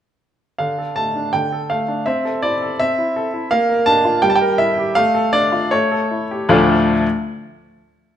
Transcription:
0.58 1.32 D3 soft
0.58 0.96 F5 medium
0.78 1.08 A4 soft
0.96 1.26 A3 soft
0.96 1.33 A5 medium
1.16 1.45 D4 soft
1.33 2.05 D3 soft
1.33 1.70 G5 medium
1.52 1.82 A4 soft
1.70 2.00 A3 soft
1.70 2.07 F5 medium
1.88 2.07 D4 soft
2.06 2.79 C4 medium
2.06 2.43 E5 medium
2.25 2.54 A4 soft
2.42 2.72 E4 soft
2.42 2.79 D5 medium
2.62 2.91 A4 soft
2.80 3.50 C4 medium
2.80 3.52 E5 medium
2.98 3.27 E4 soft
3.16 3.45 A4 soft
3.34 3.52 E4 soft
3.51 4.21 A#3 medium
3.51 3.87 F5 medium
3.69 3.98 A#4 soft
3.86 4.16 D4 medium
3.86 4.23 A5 loud
4.05 4.23 F4 medium
4.22 4.93 G3 medium
4.22 4.30 G5 medium
4.30 4.37 A5 medium
4.35 4.59 G5 medium
4.41 4.70 A#4 medium
4.58 4.89 E4 medium
4.58 4.95 E5 medium
4.78 4.96 G4 medium
4.95 5.69 A3 medium
4.95 5.33 F5 loud
5.15 5.45 A4 medium
5.33 5.64 D4 medium
5.33 5.71 D5 loud
5.52 5.72 F4 medium
5.71 6.48 A3 medium
5.71 6.50 C#5 medium
5.92 6.24 A4 medium
6.11 6.43 E4 soft
6.31 6.51 G4 soft
6.49 6.92 D2 medium
6.49 6.92 A2 medium
6.49 6.92 F3 medium
6.49 6.93 A3 medium
6.49 6.93 D4 medium
6.49 6.93 F4 medium
6.49 6.92 D5 medium

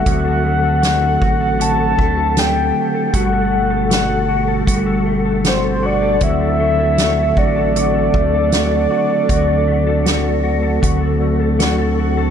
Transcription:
0.00 12.30 D3 medium
0.00 0.14 G3 medium
0.00 0.43 A3 medium
0.00 0.24 A4 soft
0.00 12.30 A4 medium
0.00 1.63 F#5 loud
0.06 1.18 D2 loud
0.06 1.59 D3 medium
0.06 3.11 F#3 soft
0.06 6.18 A3 medium
0.06 3.11 C4 medium
0.06 0.82 F#4 medium
0.06 kick medium
0.06 closed hi-hat medium
0.25 0.63 A4 medium
0.44 1.98 A3 soft
0.63 1.01 A4 medium
0.82 1.20 F#4 medium
0.82 snare medium
0.82 closed hi-hat medium
1.02 1.40 A4 soft
1.21 1.95 A1 medium
1.21 1.59 F#4 medium
1.21 kick medium
1.40 1.78 A4 soft
1.59 5.09 D3 medium
1.59 3.13 F#4 medium
1.59 2.40 A5 loud
1.59 closed hi-hat medium
1.78 2.16 A4 soft
1.98 2.72 D2 loud
1.98 3.51 A3 medium
1.98 kick medium
2.17 2.55 A4 medium
2.37 3.18 G5 medium
2.37 snare medium
2.37 closed hi-hat medium
2.56 2.94 A4 medium
2.94 3.32 A4 medium
3.13 4.64 G1 loud
3.13 6.18 B2 medium
3.13 4.65 G3 medium
3.13 6.18 G3 medium
3.13 3.90 F#4 medium
3.13 3.92 F#5 medium
3.13 kick medium
3.13 closed hi-hat medium
3.33 3.70 A4 medium
3.52 5.05 A3 medium
3.70 4.09 A4 medium
3.90 4.28 F#4 medium
3.90 4.65 F#5 medium
3.90 snare medium
3.90 closed hi-hat medium
4.10 4.47 A4 medium
4.28 4.67 F#4 medium
4.48 4.86 A4 medium
4.66 6.23 G1 loud
4.66 6.28 G3 medium
4.66 5.44 F#4 medium
4.66 kick medium
4.66 closed hi-hat medium
4.86 5.25 A4 medium
5.06 6.59 A3 medium
5.25 5.63 A4 medium
5.45 5.82 F#4 medium
5.45 5.87 C5 medium
5.45 snare medium
5.45 closed hi-hat medium
5.64 6.02 A4 medium
5.83 6.21 F#4 medium
5.83 6.25 D5 loud
6.02 6.40 A4 medium
6.21 7.33 D2 medium
6.21 7.75 D3 medium
6.21 12.30 F#3 medium
6.21 12.30 A3 medium
6.21 12.30 C4 medium
6.21 6.98 F#4 medium
6.21 7.40 E5 loud
6.21 kick loud
6.21 closed hi-hat medium
6.41 6.78 A4 medium
6.59 8.13 A3 medium
6.79 7.17 A4 medium
6.98 7.37 F#4 medium
6.98 snare medium
6.98 closed hi-hat medium
7.18 7.54 A4 soft
7.37 8.10 A1 medium
7.37 7.76 F#4 medium
7.37 11.61 D5 loud
7.37 kick medium
7.56 7.93 A4 medium
7.75 9.28 D3 medium
7.75 8.52 F#4 medium
7.75 closed hi-hat medium
7.95 8.33 A4 medium
8.14 8.87 D2 medium
8.14 9.66 A3 medium
8.14 kick medium
8.34 8.70 A4 medium
8.52 8.90 F#4 medium
8.52 snare loud
8.52 closed hi-hat medium
8.71 9.08 A4 medium
8.90 9.29 F#4 medium
9.10 9.47 A4 medium
9.28 10.79 D2 medium
9.28 10.81 D3 medium
9.28 10.05 F#4 medium
9.28 kick loud
9.28 closed hi-hat medium
9.48 9.85 A4 medium
9.67 11.19 A3 medium
9.87 10.23 A4 medium
10.05 10.43 F#4 medium
10.05 snare medium
10.05 closed hi-hat medium
10.24 10.61 A4 soft
10.43 10.82 F#4 medium
10.62 10.99 A4 soft
10.81 12.30 D2 loud
10.81 12.30 D3 medium
10.81 11.59 F#4 medium
10.81 kick medium
10.81 closed hi-hat medium
11.01 11.39 A4 soft
11.20 12.30 A3 soft
11.40 11.77 A4 medium
11.59 11.97 F#4 medium
11.59 snare loud
11.59 closed hi-hat medium
11.78 12.16 A4 medium
11.98 12.30 F#4 medium
12.17 12.30 A4 medium

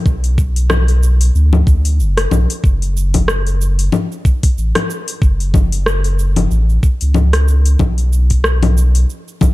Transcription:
0.06 1.31 B1 loud
0.06 kick loud
0.06 cabasa soft
0.24 open hi-hat soft
0.24 cabasa soft
0.38 kick loud
0.38 cabasa medium
0.56 open hi-hat medium
0.56 cabasa soft
0.70 cross-stick medium
0.70 low conga medium
0.70 cabasa soft
0.88 open hi-hat soft
0.88 cabasa soft
1.03 cabasa medium
1.21 open hi-hat medium
1.21 cabasa soft
1.35 1.62 D2 loud
1.35 cabasa soft
1.53 low conga medium
1.53 cabasa soft
1.67 2.01 D2 medium
1.67 kick loud
1.67 cabasa medium
1.85 open hi-hat medium
1.85 cabasa soft
1.99 2.27 F#1 medium
1.99 cabasa soft
2.17 cross-stick medium
2.17 open hi-hat soft
2.17 cabasa soft
2.31 2.47 B1 medium
2.31 low conga medium
2.31 cabasa medium
2.50 open hi-hat medium
2.50 cabasa soft
2.64 3.89 F#1 loud
2.64 kick loud
2.64 cabasa soft
2.82 open hi-hat soft
2.82 cabasa soft
2.97 cabasa medium
3.14 kick medium
3.14 open hi-hat medium
3.14 low conga medium
3.14 cabasa soft
3.28 cross-stick medium
3.28 cabasa medium
3.47 open hi-hat soft
3.47 cabasa soft
3.61 cabasa medium
3.79 open hi-hat medium
3.79 cabasa soft
3.92 low conga medium
3.92 cabasa soft
4.12 cabasa soft
4.25 kick loud
4.25 cabasa medium
4.43 kick loud
4.43 open hi-hat medium
4.43 cabasa soft
4.58 4.73 A1 medium
4.58 cabasa medium
4.75 cross-stick medium
4.75 open hi-hat soft
4.75 low conga medium
4.75 cabasa soft
4.90 cabasa medium
5.08 open hi-hat medium
5.08 cabasa soft
5.22 6.47 F#1 loud
5.22 kick loud
5.22 cabasa soft
5.40 open hi-hat soft
5.40 cabasa soft
5.54 kick loud
5.54 low conga medium
5.54 cabasa medium
5.72 open hi-hat medium
5.72 cabasa soft
5.86 cross-stick medium
5.86 cabasa soft
6.04 open hi-hat soft
6.04 cabasa soft
6.19 cabasa medium
6.36 open hi-hat soft
6.36 low conga medium
6.36 cabasa soft
6.51 6.78 A1 loud
6.51 cabasa soft
6.70 cabasa soft
6.83 kick loud
6.83 cabasa medium
7.01 7.76 C#2 loud
7.01 open hi-hat medium
7.01 cabasa soft
7.14 low conga medium
7.14 cabasa soft
7.33 cross-stick medium
7.33 open hi-hat soft
7.33 cabasa soft
7.48 cabasa medium
7.65 open hi-hat medium
7.65 cabasa soft
7.79 9.05 B1 loud
7.79 kick loud
7.79 low conga medium
7.79 cabasa soft
7.98 open hi-hat soft
7.98 cabasa soft
8.13 cabasa medium
8.30 kick medium
8.30 open hi-hat soft
8.30 cabasa soft
8.44 cross-stick medium
8.44 cabasa soft
8.63 open hi-hat soft
8.63 low conga medium
8.63 cabasa soft
8.77 cabasa medium
8.95 open hi-hat soft
8.95 cabasa soft
9.10 cabasa soft
9.28 cabasa soft
9.41 kick loud
9.41 low conga medium
9.41 cabasa medium

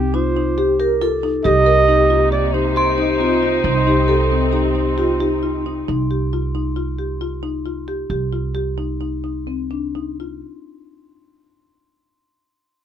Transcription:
0.00 1.41 C2 medium
0.00 0.22 D#4 medium
0.00 0.16 G4 medium
0.14 0.26 D#4 medium
0.14 0.55 F4 medium
0.14 0.80 C5 medium
0.36 0.48 D#4 medium
0.58 0.70 G4 medium
0.58 0.78 G4 medium
0.80 0.92 G4 medium
0.80 1.02 A#4 medium
1.01 1.13 F4 medium
1.01 1.46 A4 medium
1.23 1.35 D#4 medium
1.45 3.61 C2 medium
1.45 5.84 C3 medium
1.45 3.62 A#3 medium
1.45 5.84 D#4 medium
1.45 1.57 G4 medium
1.45 1.86 G4 medium
1.45 2.28 D#5 loud
1.66 1.78 A#4 medium
1.88 2.00 D#4 medium
1.88 3.24 G4 loud
2.10 2.22 F4 medium
2.32 2.44 G4 medium
2.32 2.55 D5 medium
2.53 2.66 D#4 medium
2.53 5.42 C5 loud
2.76 2.88 G4 medium
2.76 3.83 C6 medium
2.98 3.10 D#4 medium
3.20 3.32 C4 medium
3.20 3.62 F4 medium
3.42 3.55 F4 medium
3.64 5.84 C2 medium
3.64 5.86 C4 medium
3.64 3.88 D#4 medium
3.64 3.77 D#4 medium
3.87 3.99 D#4 medium
3.87 4.10 G4 medium
4.08 4.21 G4 medium
4.08 4.54 A4 medium
4.32 4.44 C4 medium
4.52 4.65 D#4 medium
4.52 4.94 G4 medium
4.75 4.87 D#4 medium
4.98 5.19 F4 medium
4.98 5.10 G4 medium
5.20 5.62 D#4 medium
5.20 5.33 G4 medium
5.43 5.55 F4 medium
5.66 5.78 D#4 medium
5.88 8.06 C2 medium
5.88 6.00 D#4 medium
6.11 6.23 G4 medium
6.33 6.45 F4 medium
6.55 6.67 D#4 medium
6.76 6.89 F4 medium
6.99 7.11 G4 medium
7.21 7.33 F4 medium
7.43 7.55 D#4 medium
7.66 7.78 F4 medium
7.88 8.00 G4 medium
8.10 10.41 C2 medium
8.10 8.22 G4 medium
8.33 8.45 F4 medium
8.55 8.67 G4 medium
8.78 8.90 D#4 medium
9.01 9.13 D#4 medium
9.24 9.37 D#4 medium
9.47 9.60 C4 medium
9.71 9.84 D4 medium
9.95 10.09 D#4 soft
10.20 10.33 F4 soft

